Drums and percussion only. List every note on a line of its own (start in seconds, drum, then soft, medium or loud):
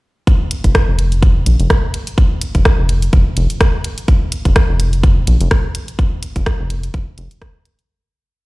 0.27 kick loud
0.27 closed hi-hat soft
0.51 closed hi-hat medium
0.64 kick medium
0.64 closed hi-hat medium
0.75 kick loud
0.75 cross-stick loud
0.75 closed hi-hat soft
0.99 closed hi-hat medium
1.12 closed hi-hat medium
1.23 kick loud
1.23 closed hi-hat soft
1.46 closed hi-hat medium
1.60 closed hi-hat medium
1.70 kick loud
1.70 cross-stick medium
1.70 closed hi-hat soft
1.94 closed hi-hat loud
2.07 closed hi-hat medium
2.18 kick loud
2.18 closed hi-hat soft
2.41 closed hi-hat loud
2.55 kick medium
2.55 closed hi-hat medium
2.65 kick loud
2.65 cross-stick loud
2.65 closed hi-hat soft
2.89 closed hi-hat loud
3.02 closed hi-hat medium
3.13 kick loud
3.13 closed hi-hat soft
3.37 closed hi-hat loud
3.50 closed hi-hat medium
3.61 kick loud
3.61 cross-stick loud
3.61 closed hi-hat soft
3.84 closed hi-hat loud
3.98 closed hi-hat medium
4.08 kick loud
4.08 closed hi-hat soft
4.32 closed hi-hat loud
4.45 kick medium
4.45 closed hi-hat soft
4.56 kick loud
4.56 cross-stick loud
4.56 closed hi-hat soft
4.80 closed hi-hat loud
4.93 closed hi-hat medium
5.03 kick loud
5.03 closed hi-hat soft
5.27 closed hi-hat loud
5.41 closed hi-hat medium
5.51 kick loud
5.51 cross-stick medium
5.51 closed hi-hat soft
5.75 closed hi-hat loud
5.88 closed hi-hat medium
5.99 kick loud
5.99 closed hi-hat soft
6.23 closed hi-hat loud
6.36 kick medium
6.36 closed hi-hat soft
6.46 kick loud
6.46 cross-stick medium
6.46 closed hi-hat soft
6.70 closed hi-hat loud
6.83 closed hi-hat soft
6.94 kick loud
6.94 closed hi-hat soft
7.18 closed hi-hat loud
7.31 closed hi-hat soft
7.42 kick loud
7.42 cross-stick medium
7.42 closed hi-hat soft
7.65 closed hi-hat loud
7.79 closed hi-hat medium